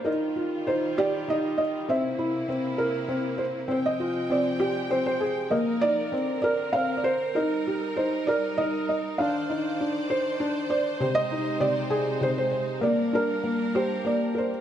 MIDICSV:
0, 0, Header, 1, 3, 480
1, 0, Start_track
1, 0, Key_signature, -3, "major"
1, 0, Tempo, 608519
1, 54, Time_signature, 3, 2, 24, 8
1, 11523, End_track
2, 0, Start_track
2, 0, Title_t, "Felt piano"
2, 0, Program_c, 0, 0
2, 36, Note_on_c, 0, 70, 62
2, 44, Note_on_c, 0, 63, 72
2, 284, Note_on_c, 0, 65, 50
2, 522, Note_off_c, 0, 63, 0
2, 528, Note_on_c, 0, 72, 80
2, 534, Note_on_c, 0, 63, 57
2, 546, Note_off_c, 0, 70, 0
2, 772, Note_on_c, 0, 67, 89
2, 775, Note_on_c, 0, 74, 88
2, 783, Note_off_c, 0, 72, 0
2, 1000, Note_off_c, 0, 63, 0
2, 1012, Note_on_c, 0, 63, 59
2, 1025, Note_on_c, 0, 75, 83
2, 1027, Note_off_c, 0, 74, 0
2, 1232, Note_off_c, 0, 75, 0
2, 1244, Note_on_c, 0, 75, 71
2, 1257, Note_off_c, 0, 65, 0
2, 1489, Note_on_c, 0, 60, 73
2, 1492, Note_off_c, 0, 75, 0
2, 1495, Note_on_c, 0, 76, 75
2, 1496, Note_off_c, 0, 63, 0
2, 1497, Note_off_c, 0, 67, 0
2, 1723, Note_on_c, 0, 64, 59
2, 1942, Note_off_c, 0, 76, 0
2, 1949, Note_off_c, 0, 60, 0
2, 1960, Note_on_c, 0, 60, 62
2, 2194, Note_on_c, 0, 70, 78
2, 2420, Note_off_c, 0, 60, 0
2, 2432, Note_on_c, 0, 60, 66
2, 2665, Note_on_c, 0, 72, 65
2, 2681, Note_off_c, 0, 64, 0
2, 2891, Note_off_c, 0, 60, 0
2, 2903, Note_on_c, 0, 60, 78
2, 2915, Note_off_c, 0, 72, 0
2, 2917, Note_off_c, 0, 70, 0
2, 2927, Note_on_c, 0, 72, 71
2, 2966, Note_off_c, 0, 72, 0
2, 3042, Note_on_c, 0, 75, 74
2, 3153, Note_on_c, 0, 65, 63
2, 3379, Note_off_c, 0, 60, 0
2, 3391, Note_on_c, 0, 60, 64
2, 3402, Note_on_c, 0, 74, 80
2, 3412, Note_off_c, 0, 75, 0
2, 3626, Note_on_c, 0, 67, 86
2, 3848, Note_off_c, 0, 74, 0
2, 3860, Note_off_c, 0, 60, 0
2, 3869, Note_on_c, 0, 72, 75
2, 3872, Note_on_c, 0, 60, 61
2, 3981, Note_off_c, 0, 72, 0
2, 3993, Note_on_c, 0, 72, 82
2, 4104, Note_on_c, 0, 68, 69
2, 4113, Note_off_c, 0, 65, 0
2, 4330, Note_off_c, 0, 72, 0
2, 4343, Note_on_c, 0, 75, 67
2, 4346, Note_on_c, 0, 58, 79
2, 4350, Note_off_c, 0, 67, 0
2, 4351, Note_off_c, 0, 68, 0
2, 4354, Note_off_c, 0, 60, 0
2, 4586, Note_on_c, 0, 74, 101
2, 4590, Note_on_c, 0, 63, 52
2, 4598, Note_off_c, 0, 75, 0
2, 4829, Note_on_c, 0, 60, 59
2, 4833, Note_off_c, 0, 58, 0
2, 4835, Note_off_c, 0, 63, 0
2, 5050, Note_off_c, 0, 74, 0
2, 5062, Note_on_c, 0, 74, 78
2, 5078, Note_on_c, 0, 70, 79
2, 5306, Note_on_c, 0, 77, 90
2, 5307, Note_off_c, 0, 60, 0
2, 5319, Note_on_c, 0, 60, 61
2, 5323, Note_off_c, 0, 74, 0
2, 5497, Note_on_c, 0, 74, 56
2, 5510, Note_off_c, 0, 77, 0
2, 5553, Note_on_c, 0, 72, 87
2, 5561, Note_off_c, 0, 74, 0
2, 5787, Note_off_c, 0, 70, 0
2, 5799, Note_on_c, 0, 70, 68
2, 5803, Note_on_c, 0, 63, 77
2, 5810, Note_off_c, 0, 60, 0
2, 5812, Note_off_c, 0, 72, 0
2, 6051, Note_on_c, 0, 67, 52
2, 6280, Note_off_c, 0, 63, 0
2, 6282, Note_on_c, 0, 72, 74
2, 6291, Note_on_c, 0, 63, 57
2, 6304, Note_off_c, 0, 70, 0
2, 6522, Note_on_c, 0, 74, 76
2, 6534, Note_on_c, 0, 70, 84
2, 6538, Note_off_c, 0, 72, 0
2, 6759, Note_off_c, 0, 63, 0
2, 6764, Note_on_c, 0, 75, 85
2, 6771, Note_on_c, 0, 63, 60
2, 6777, Note_off_c, 0, 74, 0
2, 6998, Note_off_c, 0, 75, 0
2, 7010, Note_on_c, 0, 75, 59
2, 7016, Note_off_c, 0, 67, 0
2, 7243, Note_on_c, 0, 77, 75
2, 7254, Note_off_c, 0, 63, 0
2, 7254, Note_off_c, 0, 75, 0
2, 7255, Note_off_c, 0, 70, 0
2, 7259, Note_on_c, 0, 62, 71
2, 7490, Note_on_c, 0, 63, 55
2, 7697, Note_off_c, 0, 77, 0
2, 7723, Note_off_c, 0, 62, 0
2, 7735, Note_on_c, 0, 62, 57
2, 7967, Note_on_c, 0, 72, 82
2, 8192, Note_off_c, 0, 62, 0
2, 8203, Note_on_c, 0, 62, 64
2, 8429, Note_off_c, 0, 72, 0
2, 8438, Note_on_c, 0, 74, 69
2, 8441, Note_on_c, 0, 72, 80
2, 8446, Note_off_c, 0, 63, 0
2, 8673, Note_off_c, 0, 72, 0
2, 8677, Note_on_c, 0, 48, 68
2, 8681, Note_off_c, 0, 74, 0
2, 8683, Note_off_c, 0, 62, 0
2, 8685, Note_on_c, 0, 72, 81
2, 8793, Note_on_c, 0, 75, 102
2, 8796, Note_off_c, 0, 72, 0
2, 8923, Note_on_c, 0, 63, 60
2, 9140, Note_off_c, 0, 48, 0
2, 9152, Note_on_c, 0, 48, 62
2, 9155, Note_on_c, 0, 74, 87
2, 9166, Note_off_c, 0, 75, 0
2, 9388, Note_on_c, 0, 68, 84
2, 9616, Note_off_c, 0, 48, 0
2, 9628, Note_on_c, 0, 48, 63
2, 9645, Note_on_c, 0, 72, 85
2, 9648, Note_off_c, 0, 74, 0
2, 9685, Note_off_c, 0, 72, 0
2, 9764, Note_on_c, 0, 72, 78
2, 9860, Note_off_c, 0, 72, 0
2, 9872, Note_on_c, 0, 72, 57
2, 9876, Note_off_c, 0, 63, 0
2, 10105, Note_on_c, 0, 58, 74
2, 10112, Note_off_c, 0, 68, 0
2, 10113, Note_off_c, 0, 48, 0
2, 10115, Note_off_c, 0, 72, 0
2, 10120, Note_on_c, 0, 74, 77
2, 10356, Note_on_c, 0, 62, 54
2, 10368, Note_off_c, 0, 74, 0
2, 10373, Note_on_c, 0, 70, 86
2, 10586, Note_off_c, 0, 58, 0
2, 10598, Note_on_c, 0, 58, 65
2, 10817, Note_off_c, 0, 70, 0
2, 10845, Note_on_c, 0, 67, 78
2, 10847, Note_on_c, 0, 72, 73
2, 11066, Note_off_c, 0, 58, 0
2, 11078, Note_on_c, 0, 58, 61
2, 11094, Note_on_c, 0, 74, 66
2, 11095, Note_off_c, 0, 72, 0
2, 11316, Note_on_c, 0, 70, 57
2, 11327, Note_off_c, 0, 62, 0
2, 11343, Note_on_c, 0, 72, 68
2, 11431, Note_off_c, 0, 74, 0
2, 11523, Note_off_c, 0, 58, 0
2, 11523, Note_off_c, 0, 67, 0
2, 11523, Note_off_c, 0, 70, 0
2, 11523, Note_off_c, 0, 72, 0
2, 11523, End_track
3, 0, Start_track
3, 0, Title_t, "String section"
3, 0, Program_c, 1, 48
3, 50, Note_on_c, 1, 65, 71
3, 53, Note_on_c, 1, 51, 63
3, 53, Note_on_c, 1, 55, 56
3, 1486, Note_off_c, 1, 65, 0
3, 1487, Note_off_c, 1, 51, 0
3, 1487, Note_off_c, 1, 55, 0
3, 1509, Note_on_c, 1, 58, 64
3, 1513, Note_on_c, 1, 48, 70
3, 1513, Note_on_c, 1, 64, 77
3, 2917, Note_off_c, 1, 58, 0
3, 2918, Note_off_c, 1, 64, 0
3, 2919, Note_off_c, 1, 48, 0
3, 2931, Note_on_c, 1, 53, 62
3, 2933, Note_on_c, 1, 56, 58
3, 2936, Note_on_c, 1, 79, 72
3, 2940, Note_on_c, 1, 48, 72
3, 4347, Note_off_c, 1, 56, 0
3, 4348, Note_off_c, 1, 79, 0
3, 4350, Note_off_c, 1, 48, 0
3, 4352, Note_on_c, 1, 70, 76
3, 4355, Note_on_c, 1, 63, 61
3, 4822, Note_off_c, 1, 53, 0
3, 4832, Note_off_c, 1, 63, 0
3, 4834, Note_on_c, 1, 50, 58
3, 4837, Note_on_c, 1, 60, 60
3, 5800, Note_off_c, 1, 50, 0
3, 5802, Note_off_c, 1, 60, 0
3, 5815, Note_on_c, 1, 55, 62
3, 5815, Note_on_c, 1, 63, 61
3, 7225, Note_off_c, 1, 70, 0
3, 7244, Note_off_c, 1, 55, 0
3, 7244, Note_off_c, 1, 63, 0
3, 7251, Note_on_c, 1, 74, 58
3, 7254, Note_on_c, 1, 51, 66
3, 7259, Note_on_c, 1, 72, 76
3, 8669, Note_off_c, 1, 74, 0
3, 8671, Note_off_c, 1, 51, 0
3, 8684, Note_on_c, 1, 63, 63
3, 8686, Note_on_c, 1, 56, 63
3, 8687, Note_on_c, 1, 48, 66
3, 10090, Note_off_c, 1, 72, 0
3, 10102, Note_off_c, 1, 63, 0
3, 10103, Note_off_c, 1, 48, 0
3, 10103, Note_off_c, 1, 56, 0
3, 10103, Note_on_c, 1, 55, 70
3, 10103, Note_on_c, 1, 70, 73
3, 10105, Note_on_c, 1, 62, 61
3, 11523, Note_off_c, 1, 55, 0
3, 11523, Note_off_c, 1, 62, 0
3, 11523, Note_off_c, 1, 70, 0
3, 11523, End_track
0, 0, End_of_file